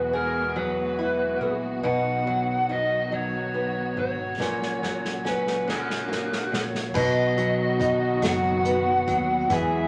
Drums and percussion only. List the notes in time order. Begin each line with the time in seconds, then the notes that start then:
4.41 snare
4.62 snare
4.83 snare
5.05 snare
5.25 snare
5.47 snare
5.69 snare
5.90 snare
6.12 snare
6.32 snare
6.53 snare
6.75 snare
6.95 kick, crash
7.38 closed hi-hat
7.81 kick, closed hi-hat
8.22 snare, closed hi-hat
8.65 closed hi-hat
9.08 kick, closed hi-hat
9.50 kick, closed hi-hat